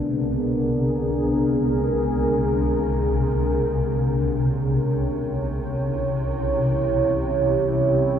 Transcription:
Already playing: C2 C3 B3 D4 G#4 A#4
4.01 C#5
4.57 E4
5.21 G4
7.32 B4

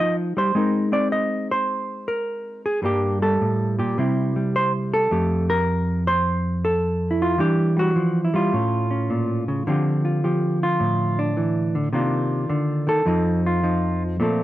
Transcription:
Already playing: D#4 G4
0.00 F3 D#5
0.37 G3 C5
0.55 G#3 C4 D#4 A#4
0.92 C4 D5
1.12 D#5
1.51 C5
2.08 A#4
2.66 G#4
2.82 G2 G3 A#3 D4 G4
3.22 G3 A4
3.41 A2
3.79 A#2 G4
3.98 C3 G3 C4 E4
4.36 G3
4.56 C5
4.94 A4
5.11 F2 A3 G4
5.50 A#4
6.07 C5
6.65 A4
7.11 E4
7.22 F4
7.38 E3 G3 D4 G4
7.77 G3 F#4
7.96 F3
8.24 E4
8.34 G3 F4
8.53 A2 C#4
8.91 C#4
9.10 A#2
9.48 C#3
9.67 D3 F3 C4 F4 G4
10.05 F4
10.24 F3 G4
10.63 F4
10.80 A2
11.19 D4
11.37 E3
11.75 D3
11.93 C3 D#3 A#3 D4 F4
12.50 D3
12.87 D#3 A4
13.06 F2 F3 C4 D#4
13.46 F4
13.63 F3 D#4
14.20 A#2 F3 A3 C4 A4

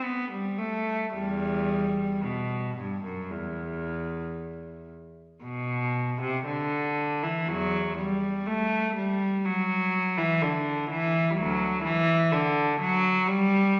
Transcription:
0.05 B3
0.31 G3
0.58 A3
1.14 E2 G3
2.23 B2
2.78 G2
3.05 F#2
3.31 E2
5.43 B2
6.21 C3
6.46 D3
7.23 E3
7.48 E2 F#3
7.97 G3
8.47 A3
8.96 G3
9.45 F#3
10.18 E3
10.42 D3
10.90 E3
11.31 G3
11.37 D2 F#3
11.84 E3
12.32 D3
12.80 F#3
13.28 G3

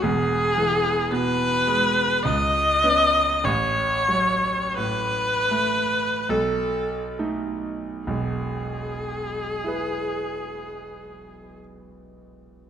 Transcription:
0.02 E1 E2 G#4
0.58 E3
1.12 B2 B4
1.67 G#3
2.23 C#2 D#5
2.84 B3 C#4
3.44 A1 C#5
4.08 F#3
4.77 A2 B4
5.51 A3
6.29 B1 A4
7.19 A3 D#4
8.05 E1 B1 G#4
9.64 E4 G#4 B4

